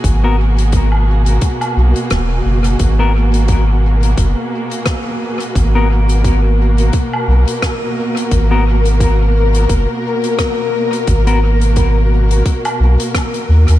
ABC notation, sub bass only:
X:1
M:4/4
L:1/16
Q:"Swing 16ths" 1/4=87
K:G#m
V:1 name="Sub bass" clef=bass
G,,,8 z2 B,,, z D,,,2 F,,,2 | G,,,8 F,,, z6 z | G,,,8 z2 B,,, z4 z | G,,,8 F,,, z6 z |
G,,,8 z2 B,,, z3 D,, D,, |]